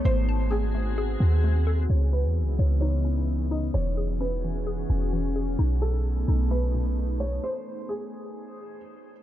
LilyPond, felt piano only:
\new Staff \with { instrumentName = "Felt piano" } { \time 4/4 \key cis \minor \tempo 4 = 130 bis'4 gis'2 r4 | r8 b'4. cis''4. dis''8 | cis''4 b'2 r4 | r8 a'4. b'4. cis''8 |
bis'4 gis'2 r4 | }